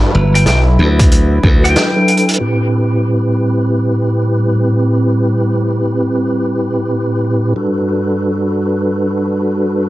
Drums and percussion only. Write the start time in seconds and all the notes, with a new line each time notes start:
0.35 closed hi-hat
0.46 snare, closed hi-hat
0.99 kick, closed hi-hat
1.12 closed hi-hat
1.43 kick
1.64 cross-stick, closed hi-hat
1.76 snare, closed hi-hat
2.08 closed hi-hat
2.17 closed hi-hat
2.29 closed hi-hat
2.34 closed hi-hat
2.61 shaker
3.05 shaker
3.26 shaker
3.29 shaker
3.31 shaker
3.34 shaker
3.37 shaker
3.58 shaker
3.70 shaker
3.90 shaker
4.02 shaker
4.23 shaker
4.34 shaker
4.55 shaker
4.66 shaker
4.86 shaker
4.99 shaker
5.19 shaker
5.30 shaker
5.51 shaker
5.63 shaker
5.84 shaker
5.95 shaker
6.16 shaker
6.27 shaker
6.47 shaker
6.60 shaker
6.80 shaker
6.91 shaker
7.12 shaker
7.24 shaker
7.45 shaker
7.57 shaker
7.77 shaker
7.88 shaker
8.09 shaker
8.20 shaker
8.42 shaker
8.53 shaker
8.74 shaker
8.87 shaker
9.07 shaker
9.17 shaker
9.38 shaker
9.50 shaker
9.70 shaker
9.83 shaker